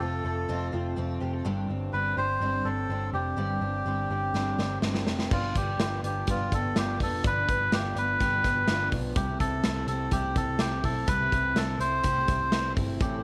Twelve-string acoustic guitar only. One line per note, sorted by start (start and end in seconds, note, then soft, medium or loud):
0.01 0.25 F3 medium
0.01 0.25 A3 medium
0.01 0.24 C4 medium
0.01 0.23 F4 medium
0.25 0.48 F3 soft
0.25 0.48 A3 soft
0.25 0.48 C4 soft
0.25 0.49 F4 soft
0.49 0.73 F2 medium
0.49 0.73 C3 medium
0.49 0.73 F3 medium
0.49 0.73 A3 medium
0.49 0.72 C4 medium
0.49 0.71 F4 medium
0.72 0.95 F3 soft
0.72 0.96 A3 soft
0.72 0.97 C4 medium
0.72 0.97 F4 medium
0.96 1.21 F3 medium
0.96 1.20 A3 medium
0.96 1.20 C4 medium
0.96 1.19 F4 medium
1.20 1.45 F3 soft
1.20 1.45 A3 soft
1.20 1.44 C4 soft
1.20 1.45 F4 medium
1.45 1.69 G2 medium
1.45 1.70 D3 medium
1.45 1.70 G3 medium
1.45 1.69 C4 medium
1.45 1.68 D4 loud
1.69 1.93 G3 soft
1.69 1.94 C4 medium
1.69 1.94 D4 medium
1.94 2.18 D3 medium
1.94 2.18 G3 medium
1.94 2.17 C4 medium
1.94 2.16 D4 medium
2.17 2.41 G3 soft
2.17 2.41 C4 soft
2.17 2.42 D4 soft
2.41 2.66 G2 medium
2.41 2.66 D3 medium
2.41 2.66 G3 medium
2.41 2.65 C4 medium
2.41 2.64 D4 medium
2.65 2.89 G3 soft
2.65 2.90 C4 soft
2.65 2.90 D4 soft
2.90 3.14 D3 medium
2.90 3.14 G3 medium
2.90 3.14 C4 medium
2.90 3.13 D4 medium
3.14 3.36 G3 soft
3.14 3.37 C4 soft
3.14 3.37 D4 soft
3.37 3.62 G2 medium
3.37 3.62 D3 medium
3.37 3.62 G3 medium
3.37 3.61 C4 medium
3.37 3.60 D4 medium
3.61 3.85 G3 soft
3.61 3.86 C4 soft
3.61 3.86 D4 soft
3.86 4.10 D3 medium
3.86 4.11 G3 medium
3.86 4.10 C4 medium
3.86 4.09 D4 medium
4.10 4.34 G3 soft
4.10 4.34 C4 soft
4.10 4.34 D4 soft
4.34 4.59 G2 medium
4.34 4.59 D3 medium
4.34 4.59 G3 medium
4.34 4.59 C4 medium
4.34 4.57 D4 medium
4.58 4.82 G3 soft
4.58 4.83 C4 soft
4.58 4.83 D4 medium
4.83 5.07 D3 medium
4.83 5.07 G3 medium
4.83 5.07 C4 medium
4.83 5.06 D4 medium
5.07 5.32 G3 soft
5.07 5.32 C4 soft
5.07 5.31 D4 medium
5.32 5.56 G2 medium
5.32 5.56 D3 medium
5.32 5.56 F3 medium
5.32 5.55 B3 medium
5.32 5.54 D4 medium
5.55 5.80 F3 soft
5.55 5.80 B3 soft
5.55 5.79 D4 soft
5.80 6.04 D3 medium
5.80 6.04 F3 medium
5.80 6.03 B3 medium
5.80 6.03 D4 medium
6.04 6.27 F3 soft
6.04 6.28 B3 soft
6.04 6.28 D4 soft
6.28 6.52 G2 medium
6.28 6.52 D3 medium
6.28 6.52 F3 medium
6.28 6.52 B3 medium
6.28 6.50 D4 medium
6.52 6.76 F3 soft
6.52 6.76 B3 soft
6.52 6.76 D4 medium
6.76 7.00 D3 medium
6.76 7.00 F3 medium
6.76 7.00 B3 medium
6.76 6.99 D4 medium
7.00 7.23 F3 soft
7.00 7.23 B3 soft
7.00 7.23 D4 medium
7.23 7.48 G2 medium
7.23 7.48 D3 medium
7.23 7.48 F3 medium
7.23 7.47 B3 medium
7.23 7.46 D4 medium
7.47 7.71 F3 soft
7.47 7.72 B3 soft
7.47 7.71 D4 soft
7.72 7.96 D3 medium
7.72 7.96 F3 medium
7.72 7.95 B3 medium
7.72 7.94 D4 medium
7.96 8.19 F3 soft
7.96 8.19 B3 soft
7.96 8.20 D4 soft
8.20 8.44 G2 medium
8.20 8.44 D3 medium
8.20 8.44 F3 medium
8.20 8.43 B3 medium
8.20 8.42 D4 medium
8.43 8.67 F3 soft
8.43 8.68 B3 soft
8.43 8.68 D4 soft
8.68 8.92 D3 medium
8.68 8.92 F3 medium
8.68 8.92 B3 medium
8.68 8.90 D4 medium
8.92 9.16 F3 soft
8.92 9.16 B3 medium
8.92 9.16 D4 medium
9.16 9.40 C3 medium
9.16 9.40 G3 medium
9.16 9.40 A3 medium
9.16 9.39 E4 medium
9.40 9.63 G3 soft
9.40 9.64 A3 soft
9.40 9.64 E4 medium
9.64 9.88 C3 medium
9.64 9.88 G3 medium
9.64 9.89 A3 medium
9.64 9.87 E4 medium
9.88 10.12 G3 soft
9.88 10.12 A3 soft
9.88 10.12 E4 soft
10.12 10.36 C3 medium
10.12 10.37 G3 medium
10.12 10.37 A3 medium
10.12 10.35 E4 medium
10.37 10.60 G3 soft
10.37 10.61 A3 soft
10.37 10.60 E4 soft
10.60 10.84 C3 medium
10.60 10.85 G3 medium
10.60 10.84 A3 medium
10.60 10.83 E4 medium
10.84 11.07 G3 soft
10.84 11.08 A3 soft
10.84 11.08 E4 soft
11.08 11.32 C3 medium
11.08 11.32 G3 medium
11.08 11.33 A3 medium
11.08 11.32 E4 medium
11.33 11.56 G3 soft
11.33 11.57 A3 soft
11.33 11.57 E4 soft
11.57 11.80 C3 medium
11.57 11.81 G3 medium
11.57 11.79 A3 medium
11.57 11.78 E4 medium
11.79 12.03 G3 soft
11.79 12.03 A3 soft
11.79 12.04 E4 soft
12.04 12.28 C3 medium
12.04 12.28 G3 medium
12.04 12.28 A3 medium
12.04 12.27 E4 medium
12.28 12.52 G3 soft
12.28 12.52 A3 soft
12.28 12.52 E4 soft
12.52 12.76 C3 medium
12.52 12.77 G3 medium
12.52 12.75 A3 medium
12.52 12.75 E4 medium
12.76 13.00 G3 soft
12.76 12.99 A3 soft
12.76 13.00 E4 medium
13.00 13.23 A2 medium
13.00 13.23 E3 medium
13.00 13.23 A3 medium
13.00 13.23 C4 medium
13.00 13.22 E4 medium